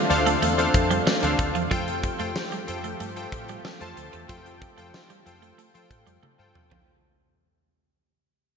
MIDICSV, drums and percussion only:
0, 0, Header, 1, 2, 480
1, 0, Start_track
1, 0, Tempo, 645161
1, 1277, Time_signature, 4, 2, 24, 8
1, 6374, End_track
2, 0, Start_track
2, 0, Title_t, "Drums"
2, 78, Note_on_c, 9, 42, 73
2, 152, Note_off_c, 9, 42, 0
2, 198, Note_on_c, 9, 42, 59
2, 272, Note_off_c, 9, 42, 0
2, 317, Note_on_c, 9, 42, 86
2, 391, Note_off_c, 9, 42, 0
2, 438, Note_on_c, 9, 42, 53
2, 512, Note_off_c, 9, 42, 0
2, 553, Note_on_c, 9, 36, 91
2, 555, Note_on_c, 9, 42, 78
2, 628, Note_off_c, 9, 36, 0
2, 630, Note_off_c, 9, 42, 0
2, 676, Note_on_c, 9, 42, 53
2, 750, Note_off_c, 9, 42, 0
2, 796, Note_on_c, 9, 54, 67
2, 797, Note_on_c, 9, 38, 115
2, 870, Note_off_c, 9, 54, 0
2, 872, Note_off_c, 9, 38, 0
2, 913, Note_on_c, 9, 42, 58
2, 988, Note_off_c, 9, 42, 0
2, 1034, Note_on_c, 9, 36, 99
2, 1034, Note_on_c, 9, 42, 80
2, 1108, Note_off_c, 9, 36, 0
2, 1109, Note_off_c, 9, 42, 0
2, 1154, Note_on_c, 9, 42, 45
2, 1228, Note_off_c, 9, 42, 0
2, 1274, Note_on_c, 9, 42, 100
2, 1275, Note_on_c, 9, 36, 119
2, 1348, Note_off_c, 9, 42, 0
2, 1349, Note_off_c, 9, 36, 0
2, 1397, Note_on_c, 9, 42, 54
2, 1471, Note_off_c, 9, 42, 0
2, 1513, Note_on_c, 9, 42, 67
2, 1514, Note_on_c, 9, 36, 96
2, 1588, Note_off_c, 9, 42, 0
2, 1589, Note_off_c, 9, 36, 0
2, 1632, Note_on_c, 9, 42, 48
2, 1706, Note_off_c, 9, 42, 0
2, 1752, Note_on_c, 9, 54, 64
2, 1754, Note_on_c, 9, 38, 109
2, 1826, Note_off_c, 9, 54, 0
2, 1828, Note_off_c, 9, 38, 0
2, 1872, Note_on_c, 9, 42, 56
2, 1947, Note_off_c, 9, 42, 0
2, 1994, Note_on_c, 9, 42, 75
2, 2068, Note_off_c, 9, 42, 0
2, 2114, Note_on_c, 9, 42, 59
2, 2188, Note_off_c, 9, 42, 0
2, 2234, Note_on_c, 9, 42, 83
2, 2308, Note_off_c, 9, 42, 0
2, 2354, Note_on_c, 9, 42, 50
2, 2428, Note_off_c, 9, 42, 0
2, 2472, Note_on_c, 9, 36, 91
2, 2473, Note_on_c, 9, 42, 86
2, 2547, Note_off_c, 9, 36, 0
2, 2548, Note_off_c, 9, 42, 0
2, 2593, Note_on_c, 9, 42, 53
2, 2667, Note_off_c, 9, 42, 0
2, 2712, Note_on_c, 9, 54, 67
2, 2714, Note_on_c, 9, 38, 116
2, 2787, Note_off_c, 9, 54, 0
2, 2788, Note_off_c, 9, 38, 0
2, 2833, Note_on_c, 9, 42, 58
2, 2907, Note_off_c, 9, 42, 0
2, 2954, Note_on_c, 9, 42, 82
2, 3028, Note_off_c, 9, 42, 0
2, 3073, Note_on_c, 9, 42, 46
2, 3147, Note_off_c, 9, 42, 0
2, 3193, Note_on_c, 9, 42, 101
2, 3195, Note_on_c, 9, 36, 109
2, 3268, Note_off_c, 9, 42, 0
2, 3269, Note_off_c, 9, 36, 0
2, 3317, Note_on_c, 9, 42, 52
2, 3391, Note_off_c, 9, 42, 0
2, 3435, Note_on_c, 9, 36, 96
2, 3435, Note_on_c, 9, 42, 70
2, 3509, Note_off_c, 9, 36, 0
2, 3509, Note_off_c, 9, 42, 0
2, 3555, Note_on_c, 9, 42, 51
2, 3630, Note_off_c, 9, 42, 0
2, 3675, Note_on_c, 9, 54, 65
2, 3677, Note_on_c, 9, 38, 109
2, 3750, Note_off_c, 9, 54, 0
2, 3751, Note_off_c, 9, 38, 0
2, 3795, Note_on_c, 9, 42, 54
2, 3869, Note_off_c, 9, 42, 0
2, 3917, Note_on_c, 9, 42, 74
2, 3991, Note_off_c, 9, 42, 0
2, 4038, Note_on_c, 9, 42, 58
2, 4112, Note_off_c, 9, 42, 0
2, 4156, Note_on_c, 9, 42, 84
2, 4231, Note_off_c, 9, 42, 0
2, 4277, Note_on_c, 9, 42, 51
2, 4352, Note_off_c, 9, 42, 0
2, 4394, Note_on_c, 9, 36, 94
2, 4396, Note_on_c, 9, 42, 81
2, 4469, Note_off_c, 9, 36, 0
2, 4471, Note_off_c, 9, 42, 0
2, 4516, Note_on_c, 9, 42, 54
2, 4590, Note_off_c, 9, 42, 0
2, 4636, Note_on_c, 9, 48, 58
2, 4711, Note_off_c, 9, 48, 0
2, 4876, Note_on_c, 9, 45, 92
2, 4951, Note_off_c, 9, 45, 0
2, 4996, Note_on_c, 9, 43, 98
2, 5071, Note_off_c, 9, 43, 0
2, 6374, End_track
0, 0, End_of_file